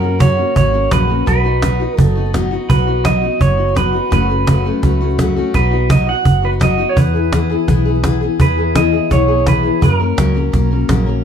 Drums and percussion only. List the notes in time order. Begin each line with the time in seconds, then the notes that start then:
0.03 cajon slap
0.20 cajon bass, cajon slap
0.38 cajon slap
0.56 cajon bass, cajon slap
0.74 cajon slap
0.83 cajon slap
0.91 cajon bass, cajon slap
1.09 cajon slap
1.27 cajon bass, cajon slap
1.45 cajon slap
1.62 cajon bass, cajon slap
1.80 cajon slap
1.98 cajon bass, cajon slap
2.16 cajon slap
2.25 cajon slap
2.34 cajon bass, cajon slap
2.52 cajon slap
2.70 cajon bass, cajon slap
2.87 cajon slap
3.05 cajon bass, cajon slap
3.23 cajon slap
3.41 cajon bass, cajon slap
3.59 cajon slap
3.68 cajon slap
3.76 cajon bass, cajon slap
3.94 cajon slap
4.12 cajon bass, cajon slap
4.30 cajon slap
4.47 cajon bass, cajon slap
4.66 cajon slap
4.83 cajon bass, cajon slap
5.01 cajon slap
5.10 cajon slap
5.19 cajon bass, cajon slap
5.37 cajon slap
5.54 cajon bass, cajon slap
5.72 cajon slap
5.90 cajon bass, cajon slap
6.08 cajon slap
6.25 cajon bass, cajon slap
6.43 cajon slap
6.52 cajon slap
6.61 cajon bass, cajon slap
6.79 cajon slap
6.97 cajon bass, cajon slap
7.15 cajon slap
7.24 cajon slap
7.32 cajon bass, cajon slap
7.51 cajon slap
7.68 cajon bass, cajon slap
7.86 cajon slap
7.95 cajon slap
8.04 cajon bass, cajon slap
8.22 cajon slap
8.40 cajon bass, cajon slap
8.57 cajon slap
8.75 cajon bass, cajon slap
8.93 cajon slap
9.11 cajon bass, cajon slap
9.29 cajon slap
9.38 cajon slap
9.47 cajon bass, cajon slap
9.65 cajon slap
9.82 cajon bass, cajon slap
10.00 cajon slap
10.18 cajon bass, cajon slap
10.36 cajon slap
10.54 cajon bass, cajon slap
10.71 cajon slap
10.80 cajon slap
10.89 cajon bass, cajon slap
11.07 cajon slap